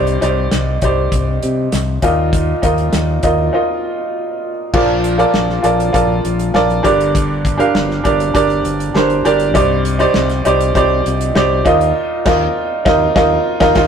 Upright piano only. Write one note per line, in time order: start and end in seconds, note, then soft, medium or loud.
0.00 0.78 G2 medium
0.00 0.16 D#4 medium
0.00 0.16 G4 medium
0.00 0.16 C5 medium
0.00 0.16 D5 medium
0.21 0.70 D#4 medium
0.21 0.70 G4 medium
0.21 0.71 C5 medium
0.21 0.71 D5 medium
0.83 1.79 D#4 medium
0.83 1.80 G4 medium
0.83 1.80 C5 medium
0.83 1.80 D5 medium
2.02 2.89 A#2 medium
2.02 2.51 D#4 medium
2.02 2.51 F4 medium
2.02 2.52 A#4 medium
2.02 2.52 D#5 medium
2.62 3.11 D#4 medium
2.62 3.12 F4 medium
2.62 3.12 A#4 medium
2.62 3.12 D#5 medium
3.23 3.47 D#4 medium
3.23 3.48 F4 medium
3.23 3.48 A#4 medium
3.23 3.48 D#5 medium
3.53 4.50 D#4 medium
3.53 4.50 F4 medium
3.53 4.50 A#4 medium
3.53 4.51 D#5 medium
4.74 5.60 A#2 medium
4.74 5.60 F3 medium
4.74 5.10 F4 medium
4.74 5.10 A4 medium
4.74 5.10 A#4 medium
4.74 5.11 D5 medium
5.18 5.55 F4 medium
5.18 5.55 A4 medium
5.18 5.55 A#4 medium
5.18 5.55 D5 medium
5.63 5.87 F4 medium
5.63 5.88 A4 medium
5.63 5.88 A#4 medium
5.63 5.88 D5 medium
5.93 6.42 F4 medium
5.93 6.42 A4 medium
5.93 6.42 A#4 medium
5.93 6.43 D5 medium
6.54 6.78 F4 medium
6.54 6.78 A4 medium
6.54 6.79 A#4 medium
6.54 6.79 D5 medium
6.83 7.70 G2 medium
6.83 7.71 D3 medium
6.83 7.44 D4 medium
6.83 7.45 G4 medium
6.83 7.45 A#4 medium
6.83 7.45 D5 medium
7.58 7.95 D4 medium
7.58 7.95 G4 medium
7.58 7.96 A#4 medium
7.58 7.96 F5 medium
8.04 8.28 D4 medium
8.04 8.29 G4 medium
8.04 8.29 A#4 medium
8.04 8.30 D5 medium
8.34 8.83 D4 medium
8.34 8.83 G4 medium
8.34 8.83 A#4 medium
8.34 8.84 D5 medium
8.94 9.19 D4 medium
8.94 9.19 G4 medium
8.94 9.20 A#4 medium
8.94 9.20 C5 medium
9.25 9.49 D4 medium
9.25 9.49 G4 medium
9.25 9.50 A#4 medium
9.25 9.50 D5 medium
9.54 10.41 G2 medium
9.54 9.91 D#4 medium
9.54 9.91 G4 medium
9.54 9.91 C5 medium
9.54 9.92 D5 medium
9.99 10.36 D#4 medium
9.99 10.36 G4 medium
9.99 10.36 C5 medium
9.99 10.37 D5 medium
10.45 10.70 D#4 medium
10.45 10.70 G4 medium
10.45 10.70 C5 medium
10.45 10.70 D5 medium
10.75 11.24 D#4 medium
10.75 11.24 G4 medium
10.75 11.24 C5 medium
10.75 11.25 D5 medium
11.35 11.60 D#4 medium
11.35 11.60 G4 medium
11.35 11.60 C5 medium
11.35 11.61 D5 medium
11.65 11.94 A#2 medium
11.65 11.95 D#4 medium
11.65 11.96 F4 medium
11.65 11.96 A#4 medium
11.65 11.96 D#5 loud
12.26 12.46 D#4 medium
12.26 12.47 F4 medium
12.26 12.47 A#4 medium
12.26 12.47 D#5 medium
12.85 13.06 D#4 medium
12.85 13.06 F4 medium
12.85 13.07 A#4 medium
12.85 13.07 D#5 medium
13.16 13.36 D#4 medium
13.16 13.37 F4 medium
13.16 13.37 A#4 loud
13.16 13.38 D#5 medium
13.60 13.74 D#4 loud
13.60 13.74 F4 loud
13.60 13.74 A#4 loud
13.76 13.87 D#4 medium
13.76 13.87 F4 medium
13.76 13.87 A#4 medium